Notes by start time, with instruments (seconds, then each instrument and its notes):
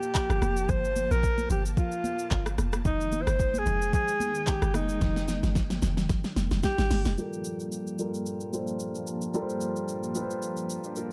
Already playing: string machine F3 A#3 A5, alto saxophone G4
0.03 shaker
0.15 kick, clap, shaker
0.30 log drum bass G1, cross-stick, shaker
0.42 log drum bass F1, cross-stick, high conga, shaker
0.57 shaker
0.69 log drum bass G1, alto saxophone C5, kick, low conga, shaker
0.85 shaker
0.96 high conga, shaker
1.11 log drum bass A#1, alto saxophone A#4, shaker
1.23 kick, shaker
1.38 high conga, shaker
1.50 log drum bass G1, alto saxophone G4, low conga, shaker
1.66 shaker
1.77 alto saxophone F4, kick, low conga, shaker
1.92 shaker
2.04 high conga, shaker
2.19 shaker
2.31 log drum bass G1, kick, clap, shaker
2.46 cross-stick, shaker
2.58 log drum bass F1, cross-stick, high conga, shaker
2.73 cross-stick, shaker
2.85 log drum bass F1, string machine D#3 G#3 G5, alto saxophone D#4, kick, low conga, shaker
3.01 shaker
3.12 high conga, shaker
3.22 alto saxophone C5
3.27 log drum bass G1, cross-stick, shaker
3.40 kick, shaker
3.54 high conga, shaker
3.58 alto saxophone G#4
3.66 log drum bass F1, low conga, shaker
3.82 shaker
3.93 alto saxophone G#4, kick, low conga, shaker
4.08 shaker
4.20 high conga, shaker
4.35 shaker
4.47 alto saxophone G4, kick, clap, shaker
4.62 log drum bass G1, cross-stick, shaker
4.74 log drum bass F1, alto saxophone D#4, cross-stick, high conga, shaker
4.89 shaker
5.01 log drum bass F1, kick, snare, low conga, shaker
5.16 snare, shaker
5.28 snare, high conga, shaker
5.43 log drum bass G1, snare, shaker
5.55 kick, snare, shaker
5.70 snare, high conga, shaker
5.82 log drum bass F1, snare, low conga, shaker
5.97 snare, shaker
6.09 log drum bass G1, kick, snare, low conga, shaker
6.24 snare, shaker
6.36 log drum bass F1, snare, high conga, shaker
6.51 log drum bass F1, snare, shaker
6.63 alto saxophone G4, kick, snare, shaker
6.78 log drum bass G#1, snare, shaker
6.91 log drum bass G1, snare, open hi-hat, high conga, shaker
7.05 log drum bass F1, snare, shaker
7.18 string machine G2 F3 A#3 A5, grand piano G3 F4 A4 A#4, shaker
7.33 shaker
7.45 shaker
7.60 shaker
7.72 shaker
7.87 shaker
7.99 grand piano G3 F4 A4 A#4, shaker
8.14 shaker
8.26 shaker
8.40 shaker
8.53 grand piano G3 F4 A4 C5, shaker
8.67 shaker
8.80 shaker
8.95 shaker
9.07 shaker
9.22 shaker
9.34 grand piano G3 F4 A4 A#4, shaker
9.42 grand piano C5
9.49 shaker
9.61 shaker
9.76 shaker
9.88 shaker
10.03 shaker
10.15 grand piano G3 F4 A4 B4, shaker
10.23 grand piano C5
10.30 shaker
10.42 shaker
10.57 shaker
10.70 shaker
10.84 grand piano D4 G4, shaker
10.96 grand piano F4 A#4, shaker